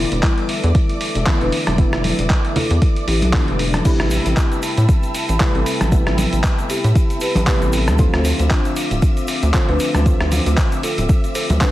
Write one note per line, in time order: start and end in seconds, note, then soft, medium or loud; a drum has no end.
0.00 1.24 D3 medium
0.00 1.24 E3 medium
0.00 1.24 A3 medium
0.00 1.24 B3 medium
0.00 0.18 E4 medium
0.00 1.24 E4 loud
0.00 0.18 A4 loud
0.00 3.81 A4 medium
0.00 3.86 D5 medium
0.00 3.81 E5 medium
0.00 3.81 D6 medium
0.00 3.86 D6 medium
0.12 0.20 E1 loud
0.12 closed hi-hat medium
0.23 0.59 G3 medium
0.23 0.59 E4 loud
0.23 kick loud
0.23 clap loud
0.23 closed hi-hat medium
0.38 closed hi-hat soft
0.49 open hi-hat loud
0.64 0.72 E2 loud
0.64 closed hi-hat medium
0.75 kick loud
0.75 closed hi-hat medium
0.89 closed hi-hat soft
1.01 open hi-hat loud
1.15 1.24 E1 medium
1.15 closed hi-hat medium
1.26 1.75 D3 medium
1.26 1.76 E3 medium
1.26 1.76 A3 medium
1.26 1.76 B3 medium
1.26 1.76 E4 medium
1.26 kick loud
1.26 clap loud
1.26 closed hi-hat medium
1.41 1.50 E1 loud
1.41 1.74 D4 medium
1.41 1.74 B4 loud
1.41 closed hi-hat soft
1.52 open hi-hat loud
1.67 1.86 E1 medium
1.67 cross-stick medium
1.67 closed hi-hat medium
1.67 high conga medium
1.78 3.31 D3 medium
1.78 3.31 E3 medium
1.78 3.31 A3 medium
1.78 3.31 B3 medium
1.78 3.31 E4 loud
1.78 kick loud
1.78 closed hi-hat medium
1.93 2.11 E1 loud
1.93 cross-stick medium
1.93 closed hi-hat soft
2.04 open hi-hat loud
2.04 high conga medium
2.19 2.27 E1 medium
2.19 closed hi-hat medium
2.30 kick loud
2.30 clap loud
2.30 closed hi-hat medium
2.45 closed hi-hat soft
2.56 3.02 E4 medium
2.56 3.02 A4 medium
2.56 open hi-hat loud
2.56 low conga medium
2.70 2.79 E2 loud
2.70 closed hi-hat medium
2.82 kick loud
2.82 closed hi-hat medium
2.96 closed hi-hat soft
3.08 3.24 A1 loud
3.08 3.31 E4 medium
3.08 3.31 G4 medium
3.08 open hi-hat loud
3.22 3.41 B1 medium
3.22 closed hi-hat medium
3.22 high conga medium
3.33 3.82 D3 medium
3.33 3.82 E3 medium
3.33 3.82 A3 medium
3.33 3.82 B3 medium
3.33 3.57 D4 medium
3.33 3.83 E4 medium
3.33 kick loud
3.33 clap loud
3.33 open hi-hat medium
3.48 3.81 E1 medium
3.48 closed hi-hat soft
3.59 3.83 B3 medium
3.59 3.83 D4 medium
3.59 open hi-hat loud
3.73 cross-stick medium
3.73 closed hi-hat medium
3.73 high conga medium
3.85 5.38 C3 medium
3.85 5.38 G3 medium
3.85 5.38 A3 medium
3.85 4.32 E4 medium
3.85 5.38 E4 loud
3.85 4.32 G4 loud
3.85 5.38 B4 medium
3.85 11.71 E5 medium
3.85 7.95 G5 medium
3.85 7.95 A5 medium
3.85 7.95 B5 medium
3.85 11.71 E6 medium
3.85 kick loud
3.85 closed hi-hat medium
3.85 crash medium
3.85 shaker soft
4.00 4.18 A1 loud
4.00 cross-stick medium
4.00 closed hi-hat soft
4.11 open hi-hat loud
4.11 shaker loud
4.26 4.34 A1 medium
4.26 closed hi-hat medium
4.26 shaker soft
4.37 4.72 E4 loud
4.37 kick loud
4.37 clap loud
4.37 closed hi-hat medium
4.37 shaker medium
4.52 closed hi-hat soft
4.52 shaker soft
4.63 open hi-hat loud
4.63 shaker medium
4.77 4.86 A2 loud
4.77 closed hi-hat medium
4.77 shaker soft
4.89 kick loud
4.89 closed hi-hat medium
4.89 shaker medium
5.03 closed hi-hat soft
5.03 shaker soft
5.15 open hi-hat loud
5.15 shaker medium
5.29 5.38 A1 loud
5.29 closed hi-hat medium
5.29 shaker soft
5.40 5.89 C3 medium
5.40 5.89 G3 medium
5.40 5.89 A3 medium
5.40 5.89 E4 loud
5.40 5.89 B4 medium
5.40 kick loud
5.40 clap loud
5.40 closed hi-hat medium
5.40 shaker medium
5.55 5.63 A1 medium
5.55 5.88 C4 medium
5.55 5.88 A4 medium
5.55 closed hi-hat soft
5.66 open hi-hat loud
5.66 shaker medium
5.81 5.99 A1 medium
5.81 cross-stick medium
5.81 closed hi-hat medium
5.81 high conga medium
5.81 shaker soft
5.92 7.44 C3 medium
5.92 7.44 G3 medium
5.92 7.45 A3 medium
5.92 7.45 B3 medium
5.92 7.45 E4 loud
5.92 kick loud
5.92 closed hi-hat medium
5.92 shaker medium
6.07 6.25 A1 loud
6.07 cross-stick medium
6.07 closed hi-hat soft
6.18 open hi-hat loud
6.18 high conga medium
6.18 shaker medium
6.33 6.41 A1 medium
6.33 closed hi-hat medium
6.33 shaker soft
6.44 kick loud
6.44 clap loud
6.44 closed hi-hat medium
6.44 shaker medium
6.58 closed hi-hat soft
6.58 shaker soft
6.70 7.16 E4 medium
6.70 7.16 G4 medium
6.70 open hi-hat loud
6.70 shaker loud
6.84 6.93 A2 loud
6.84 closed hi-hat medium
6.84 shaker soft
6.95 kick loud
6.95 closed hi-hat medium
6.95 shaker medium
7.10 closed hi-hat soft
7.10 shaker soft
7.21 7.45 G4 medium
7.21 7.45 B4 medium
7.21 open hi-hat loud
7.21 shaker medium
7.35 7.44 A1 loud
7.35 closed hi-hat medium
7.35 high conga medium
7.35 shaker soft
7.47 7.96 C3 medium
7.47 7.96 G3 medium
7.47 7.96 A3 medium
7.47 7.96 B3 medium
7.47 7.96 E4 medium
7.47 7.70 G4 medium
7.47 7.70 B4 medium
7.47 kick loud
7.47 clap loud
7.47 open hi-hat medium
7.47 shaker medium
7.62 7.89 A1 loud
7.62 closed hi-hat soft
7.62 shaker soft
7.73 7.96 C4 medium
7.73 7.96 A4 medium
7.73 open hi-hat loud
7.73 shaker loud
7.88 8.06 D2 medium
7.88 cross-stick medium
7.88 closed hi-hat medium
7.88 high conga medium
7.88 shaker soft
7.98 9.51 D3 medium
7.98 9.51 F3 medium
7.98 9.51 A3 medium
7.98 9.51 C4 medium
7.98 11.71 C4 medium
7.98 8.45 F4 medium
7.98 11.71 F4 medium
7.98 9.52 F4 loud
7.98 8.45 A4 loud
7.98 11.71 D6 medium
7.98 kick loud
7.98 closed hi-hat medium
7.98 shaker medium
8.14 8.32 D2 loud
8.14 cross-stick medium
8.14 closed hi-hat soft
8.25 open hi-hat loud
8.25 shaker loud
8.39 8.48 D2 loud
8.39 closed hi-hat medium
8.39 shaker soft
8.51 8.86 D4 medium
8.51 8.86 F4 loud
8.51 kick loud
8.51 clap loud
8.51 closed hi-hat medium
8.51 shaker medium
8.65 closed hi-hat soft
8.65 shaker soft
8.76 open hi-hat loud
8.76 shaker loud
8.91 9.00 D1 loud
8.91 closed hi-hat medium
8.91 shaker soft
9.02 kick loud
9.02 closed hi-hat medium
9.02 shaker medium
9.17 closed hi-hat soft
9.17 shaker soft
9.28 open hi-hat loud
9.28 shaker loud
9.43 9.51 D2 loud
9.43 closed hi-hat medium
9.43 shaker soft
9.54 10.03 D3 medium
9.54 10.03 F3 medium
9.54 10.03 A3 medium
9.54 10.03 C4 medium
9.54 10.03 F4 loud
9.54 kick loud
9.54 clap loud
9.54 closed hi-hat medium
9.54 shaker medium
9.69 9.77 D2 medium
9.69 10.02 D4 medium
9.69 10.02 B4 loud
9.69 closed hi-hat soft
9.80 open hi-hat loud
9.80 shaker medium
9.94 10.13 D2 medium
9.94 cross-stick medium
9.94 closed hi-hat medium
9.94 high conga medium
9.94 shaker soft
10.06 11.58 D3 medium
10.06 11.58 F3 medium
10.06 11.58 A3 medium
10.06 11.58 C4 medium
10.06 11.58 F4 loud
10.06 kick loud
10.06 closed hi-hat medium
10.06 shaker medium
10.20 10.39 D2 loud
10.20 cross-stick medium
10.20 closed hi-hat soft
10.32 open hi-hat loud
10.32 high conga medium
10.32 shaker loud
10.46 10.55 D2 medium
10.46 closed hi-hat medium
10.46 shaker soft
10.58 kick loud
10.58 clap loud
10.58 closed hi-hat medium
10.58 shaker medium
10.72 closed hi-hat soft
10.72 shaker soft
10.83 11.30 F4 medium
10.83 11.30 A4 medium
10.83 open hi-hat loud
10.83 shaker medium
10.98 11.06 D1 loud
10.98 closed hi-hat medium
10.98 shaker soft
11.09 kick loud
11.09 closed hi-hat medium
11.09 shaker medium
11.24 closed hi-hat soft
11.24 shaker soft
11.35 11.58 A4 medium
11.35 11.58 C5 medium
11.35 open hi-hat loud
11.35 shaker loud
11.50 11.58 D2 loud
11.50 closed hi-hat soft
11.50 high conga loud
11.50 shaker soft
11.61 11.71 D3 medium
11.61 11.71 F3 medium
11.61 11.71 G3 medium
11.61 11.71 C4 medium
11.61 11.71 D4 medium
11.61 11.71 F4 medium
11.61 11.71 B4 medium
11.61 kick loud
11.61 clap loud
11.61 open hi-hat medium
11.61 shaker medium